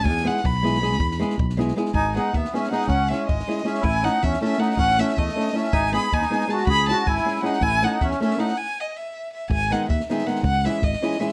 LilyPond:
<<
  \new Staff \with { instrumentName = "Violin" } { \time 5/8 \key gis \phrygian \tempo 4 = 159 gis''8 fis''8 b''4.~ | b''4 r4. | gis''8 fis''8 e''8 e''8 fis''8 | fis''8 e''8 dis''4 e''8 |
gis''8 fis''8 e''8 e''8 fis''8 | fis''8 e''8 dis''4 e''8 | gis''8 b''8 gis''4 a''8 | b''8 a''8 gis''4 fis''8 |
gis''8 fis''8 e''8 e''8 fis''8 | gis''8 dis''8 e''4 e''8 | gis''8 fis''8 e''8 e''8 fis''8 | fis''8 e''8 dis''4 e''8 | }
  \new Staff \with { instrumentName = "Accordion" } { \time 5/8 \key gis \phrygian r2 r8 | r2 r8 | dis'8 dis'8 b8 cis'8 dis'8 | cis'8 cis'8 gis4 cis'8 |
e'8 dis'8 cis'8 cis'8 dis'8 | cis'8 cis'8 a4 cis'8 | dis'8 gis'8 dis'4 fis'8 | gis'8 fis'8 e'4 dis'8 |
e'8 dis'8 cis'8 cis'8 dis'8 | r2 r8 | r2 r8 | r2 r8 | }
  \new Staff \with { instrumentName = "Nylon-string guitar" } { \time 5/8 \key gis \phrygian r8 <gis b e' gis'>8 r8 <gis b e' gis'>8 <gis b e' gis'>8 | r8 <gis b e' gis'>8 r8 <gis b e' gis'>8 <gis b e' gis'>8 | r8 <gis b dis' gis'>8 r8 <gis b dis' gis'>8 <gis b dis' gis'>8 | r8 <gis cis' e' gis'>8 r8 <gis cis' e' gis'>8 <gis cis' e' gis'>8 |
r8 <a cis' e' a'>8 r8 <a cis' e' a'>8 <a cis' e' a'>8 | r8 <a cis' e' a'>8 r8 <a cis' e' a'>8 <a cis' e' a'>8 | r8 <gis b dis' gis'>8 r8 <gis b dis' gis'>8 <gis b dis' gis'>8 | r8 <gis cis' e' gis'>8 r8 <gis cis' e' gis'>8 <gis cis' e' gis'>8 |
r8 <a cis' e' a'>8 r8 <a cis' e' a'>8 <a cis' e' a'>8 | r2 r8 | r8 <dis gis b dis' gis'>8 r8 <dis gis b dis' gis'>8 <dis gis b dis' gis'>8 | r8 <e gis cis' e' gis'>8 r8 <e gis cis' e' gis'>8 <e gis cis' e' gis'>8 | }
  \new Staff \with { instrumentName = "Fingered electric bass" } { \clef bass \time 5/8 \key gis \phrygian e,4 b,,4. | e,4 b,,4. | gis,,4 dis,8 r4 | cis,4 gis,,8 r4 |
a,,4 e,8 r4 | a,,4 e,8 r4 | gis,,4 dis,8 r4 | cis,4 gis,,8 r4 |
a,,4 e,8 r4 | r2 r8 | gis,,4 dis,8 r4 | cis,4 gis,,8 r4 | }
  \new DrumStaff \with { instrumentName = "Drums" } \drummode { \time 5/8 bd16 sn16 sn16 sn16 bd8 sn16 sn16 sn16 sn16 | bd16 sn16 sn16 sn16 bd16 sn16 sn16 sn16 sn16 sn16 | bd8 sn8 bd16 sn16 sn16 sn16 sn16 sn16 | bd8 sn8 bd16 sn16 sn16 sn16 sn16 sn16 |
bd8 sn8 bd16 sn16 sn16 sn16 sn16 sn16 | bd16 sn16 sn16 sn16 bd16 sn16 sn16 sn16 sn16 sn16 | bd8 sn8 bd16 sn16 sn16 sn16 sn16 sn16 | bd8 sn8 bd16 sn16 sn16 sn16 sn16 sn16 |
bd8 sn8 bd16 sn16 sn16 sn16 sn16 sn16 | r4 r4. | bd8 sn8 bd16 sn16 sn16 sn16 sn16 sn16 | bd8 sn8 bd16 sn16 sn16 sn16 sn16 sn16 | }
>>